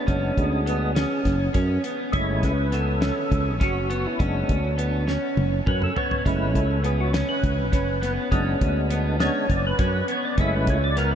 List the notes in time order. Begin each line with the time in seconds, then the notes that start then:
0.07 F#1 G#3 B3 C#4 D4, kick, closed hi-hat
0.37 D2 G#4, kick, closed hi-hat
0.66 B3, closed hi-hat
0.95 C#4, snare, closed hi-hat
1.25 F#1, kick, snare, closed hi-hat
1.54 F#2 C#4, kick, closed hi-hat
1.84 B3, closed hi-hat
2.12 F#1 G#3 A3 C#4 E4 C#5, kick, closed hi-hat
2.43 C#2 B4, kick, snare, closed hi-hat
2.72 B3 A4, snare, closed hi-hat
3.01 C#4, snare, closed hi-hat
3.31 C#2, kick, closed hi-hat
3.48 G#4
3.60 F#1 C#4 F#4, kick, snare, closed hi-hat
3.90 B3, closed hi-hat
4.07 E4
4.19 F#1 G#3 B3 C#4 D4, kick, closed hi-hat
4.49 D2, kick, closed hi-hat
4.78 B3, closed hi-hat
5.07 C#4, snare
5.37 F#1, high tom
5.66 F#2 C#4 B4, kick, mid tom
5.82 A4, mid tom
5.96 B3 C#5, floor tom
6.11 floor tom
6.25 F#1 G#3 A3 C#4 E4 B4, kick, closed hi-hat
6.55 C#2 A4, kick, closed hi-hat
6.84 B3 G#4, closed hi-hat
7.01 F#4
7.13 C#4, snare, closed hi-hat
7.29 B4
7.43 C#2, kick, closed hi-hat
7.72 F#1 C#4, kick, snare, closed hi-hat
8.02 B3, snare, closed hi-hat
8.31 F#1 G#3 B3 C#4 D4, kick, closed hi-hat
8.61 D2, kick, closed hi-hat
8.90 B3, closed hi-hat
9.20 G#3 B3 C#4 D4 C#5, snare, closed hi-hat
9.49 F#1 D5, kick, closed hi-hat
9.67 B4
9.79 F#2 C#4, kick, closed hi-hat
10.08 B3 C#5, closed hi-hat
10.25 D5
10.38 F#1 G#3 A3 C#4 E4 E5, kick, closed hi-hat
10.56 B4
10.67 C#2 C#5, kick, closed hi-hat
10.84 D5
10.97 B3 A#4, snare, closed hi-hat
11.11 B4